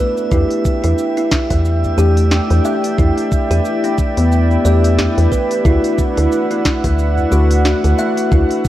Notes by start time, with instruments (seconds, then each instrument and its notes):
Already playing: synth keys A3 D4 B4, synth texture E5
0.00 kalimba B4
0.17 cabasa
0.30 fm bass E2, synth keys A3 D4 G4, kalimba E4, analog synth pad E4 B4 D5 G5, kick, cabasa
0.50 open hi-hat, cabasa
0.65 kick, cabasa
0.84 fm bass E2, kalimba E4, open hi-hat, cabasa
0.98 cabasa
1.17 kalimba E4, open hi-hat, cabasa
1.31 kick, snare, cabasa
1.50 fm bass E2, kalimba E5, kick, open hi-hat, cabasa
1.65 cabasa
1.84 udu, cabasa
1.97 fm bass E2, synth keys A3 D4 G4, kalimba G4, cabasa
2.17 open hi-hat, cabasa
2.31 kalimba G4, snare, cabasa
2.50 fm bass E2, open hi-hat, cabasa
2.64 synth keys A3 D4 G4, kalimba E5, cabasa
2.84 open hi-hat, cabasa
2.96 fm bass E2, synth keys A3 D4 G4, kalimba E4, kick, cabasa
3.17 open hi-hat, cabasa
3.32 kick, cabasa
3.51 fm bass E2, kalimba G4, open hi-hat, cabasa
3.65 cabasa
3.84 kalimba D4, open hi-hat, cabasa
3.98 kick, cabasa
4.17 fm bass E2, kalimba B3, open hi-hat, cabasa
4.32 cabasa
4.51 cabasa
4.64 fm bass E2, synth keys A3 D4 G4, kalimba D5, cabasa
4.84 open hi-hat, cabasa
4.98 kalimba G4, snare, udu, cabasa
5.18 fm bass E2, open hi-hat, cabasa
5.30 synth keys A3 D4 G4, kalimba B4, kick, cabasa
5.51 open hi-hat, cabasa
5.63 fm bass D2, synth keys A3 D4 F#4, kalimba E4, analog synth pad F#5, kick, cabasa
5.84 open hi-hat, cabasa
5.98 kick, cabasa
6.17 fm bass D2, kalimba E4, open hi-hat, cabasa
6.32 cabasa
6.50 kalimba E4, open hi-hat, cabasa
6.65 kick, snare, cabasa
6.84 fm bass D2, kalimba E5, kick, open hi-hat, cabasa
6.99 cabasa
7.17 udu, cabasa
7.30 fm bass D2, synth keys A3 D4 F#4, kalimba F#4, cabasa
7.51 open hi-hat, cabasa
7.65 kalimba F#4, snare, cabasa
7.84 fm bass D2, open hi-hat, cabasa
7.97 synth keys A3 D4 F#4, kalimba E5, cabasa
8.17 open hi-hat, cabasa
8.29 fm bass D2, synth keys A3 D4 F#4, kalimba E4, analog synth pad E5, kick, cabasa
8.51 open hi-hat, cabasa
8.65 kick, cabasa